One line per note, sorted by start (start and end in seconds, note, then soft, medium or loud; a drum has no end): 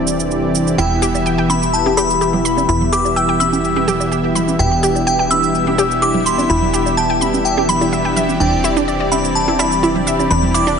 0.00 0.76 E1 medium
0.00 0.74 C3 medium
0.00 0.76 E3 medium
0.00 8.36 E3 medium
0.00 0.74 G3 medium
0.00 0.76 C4 medium
0.00 0.74 D4 medium
0.00 0.76 E4 medium
0.00 0.76 G4 medium
0.00 0.74 A4 medium
0.00 0.76 D5 medium
0.07 shaker medium
0.20 shaker soft
0.31 shaker soft
0.55 shaker medium
0.67 shaker soft
0.78 2.67 E1 medium
0.78 8.36 B2 medium
0.78 4.57 E3 medium
0.78 10.79 G3 medium
0.78 4.57 B3 medium
0.78 4.55 E4 medium
0.78 0.89 E4 medium
0.78 4.57 E4 medium
0.78 10.79 G4 medium
0.78 4.57 G4 medium
0.78 4.57 E5 medium
0.78 1.46 G5 medium
0.78 shaker soft
1.02 1.09 G4 loud
1.02 shaker medium
1.15 high bongo medium
1.15 shaker soft
1.26 1.33 G5 medium
1.26 shaker soft
1.38 1.45 G5 medium
1.50 1.57 B5 medium
1.50 1.72 B5 medium
1.50 high conga medium
1.50 shaker medium
1.63 shaker soft
1.73 1.96 A5 medium
1.73 shaker soft
1.86 1.92 G4 medium
1.86 high conga medium
1.97 2.04 G4 loud
1.97 2.68 B5 medium
1.97 high bongo medium
1.97 shaker medium
2.10 shaker soft
2.21 2.32 G4 medium
2.21 shaker soft
2.34 low conga medium
2.45 2.52 B5 medium
2.45 shaker medium
2.58 high bongo medium
2.58 high conga medium
2.58 shaker soft
2.69 4.57 E1 medium
2.69 2.79 E4 medium
2.69 2.91 B5 medium
2.69 shaker soft
2.81 low conga medium
2.92 3.00 G4 medium
2.92 3.17 D6 loud
2.92 shaker medium
3.05 high bongo medium
3.05 shaker soft
3.16 3.23 G5 medium
3.16 3.38 E6 loud
3.16 shaker soft
3.29 3.35 G5 medium
3.40 3.47 B5 medium
3.40 3.84 E6 medium
3.40 high conga medium
3.40 shaker medium
3.53 high conga medium
3.53 shaker soft
3.64 shaker soft
3.76 3.83 G4 medium
3.76 high conga medium
3.88 3.95 G4 loud
3.88 low conga medium
3.88 shaker medium
4.00 high bongo medium
4.00 shaker soft
4.12 4.22 G4 medium
4.12 shaker soft
4.35 4.42 B5 medium
4.35 low conga medium
4.35 shaker medium
4.48 high conga medium
4.48 shaker soft
4.59 6.47 E1 medium
4.59 8.38 E3 medium
4.59 8.38 B3 medium
4.59 10.79 D4 medium
4.59 4.70 E4 medium
4.59 8.38 E4 medium
4.59 8.38 G4 medium
4.59 8.38 E5 medium
4.59 5.04 G5 medium
4.59 shaker soft
4.83 4.90 G4 medium
4.83 shaker medium
4.96 high bongo medium
4.96 shaker soft
5.07 5.14 G5 medium
5.07 5.29 G5 medium
5.07 shaker soft
5.19 5.26 G5 medium
5.31 5.38 B5 medium
5.31 6.04 E6 loud
5.31 high conga medium
5.31 shaker medium
5.44 shaker soft
5.55 shaker soft
5.67 5.73 G4 medium
5.67 high conga medium
5.78 5.85 G4 loud
5.78 high bongo medium
5.78 shaker medium
5.91 shaker soft
6.02 6.13 G4 medium
6.02 6.13 D6 medium
6.02 shaker soft
6.15 low conga medium
6.26 6.33 B5 medium
6.26 6.48 C6 medium
6.26 shaker medium
6.38 high bongo medium
6.38 high conga medium
6.38 shaker soft
6.50 8.38 E1 medium
6.50 6.60 E4 medium
6.50 6.94 B5 medium
6.50 shaker soft
6.62 low conga medium
6.74 6.81 G4 loud
6.74 shaker medium
6.86 high bongo medium
6.86 shaker soft
6.97 7.04 G5 medium
6.97 7.46 A5 medium
6.97 shaker soft
7.10 7.16 G5 medium
7.21 7.28 B5 medium
7.21 high conga medium
7.21 shaker medium
7.34 high conga medium
7.34 shaker soft
7.45 7.70 G5 medium
7.45 shaker soft
7.57 7.64 G4 medium
7.57 high conga medium
7.69 7.76 B5 medium
7.69 8.13 B5 medium
7.69 low conga medium
7.69 shaker medium
7.81 7.88 E4 medium
7.81 high bongo medium
7.81 shaker soft
7.93 8.00 E5 medium
7.93 shaker soft
8.05 8.09 G5 medium
8.16 8.21 E5 medium
8.16 low conga medium
8.16 shaker medium
8.29 high conga medium
8.29 shaker soft
8.40 10.28 E1 medium
8.40 10.79 C3 medium
8.40 10.79 E3 medium
8.40 10.79 C4 medium
8.40 8.51 D4 medium
8.40 10.79 E4 medium
8.40 10.79 G4 medium
8.40 10.79 D5 medium
8.40 9.14 G5 medium
8.40 shaker soft
8.64 8.71 E4 medium
8.64 shaker medium
8.77 8.83 D4 medium
8.77 high bongo medium
8.77 shaker soft
8.88 8.95 D5 medium
8.88 shaker soft
9.00 9.07 D5 medium
9.12 9.19 E5 medium
9.12 9.34 B5 medium
9.12 high conga medium
9.12 shaker medium
9.25 shaker soft
9.35 9.58 A5 medium
9.35 shaker soft
9.48 9.54 E4 medium
9.48 high conga medium
9.59 9.66 E4 loud
9.59 10.27 B5 medium
9.59 high bongo medium
9.59 shaker medium
9.72 shaker soft
9.83 9.94 E4 medium
9.83 shaker soft
9.96 low conga medium
10.07 10.14 E5 medium
10.07 shaker medium
10.19 high bongo medium
10.19 high conga medium
10.19 shaker soft
10.31 10.79 E1 medium
10.31 10.41 D4 medium
10.31 10.55 B5 loud
10.31 shaker soft
10.43 low conga medium
10.54 10.62 E4 medium
10.54 10.79 D6 medium
10.54 shaker medium
10.67 10.73 D4 loud
10.67 high bongo medium
10.67 shaker soft